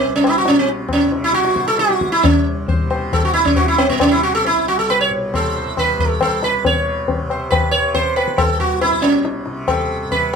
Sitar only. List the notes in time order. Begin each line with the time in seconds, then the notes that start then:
Already playing: C4
0.16 C#4
0.27 E4
0.38 F#4
0.48 C#4
0.59 C4
0.93 C#4
1.24 E4
1.34 F#4
1.57 C5
1.68 A4
1.79 F#4
2.12 E4
2.23 C#4
2.69 C5
2.90 C5
3.13 A4
3.25 F#4
3.34 E4
3.45 C#4
3.56 F#4
3.68 E4
3.78 C4
3.89 B3
4.01 C#4
4.11 E4
4.23 F#4
4.35 A4
4.46 E4
4.68 F#4
4.79 A4
4.90 B4
5.01 C#5
5.34 A4 C5
5.56 C5
5.78 B4 C5
6.00 A4
6.21 A4 C5
6.44 B4
6.66 C#5
7.31 C5
7.50 B4
7.71 C#5
7.95 C5
8.16 B4
8.38 A4
8.60 F#4
8.81 E4
9.02 C#4
9.68 A4
10.12 B4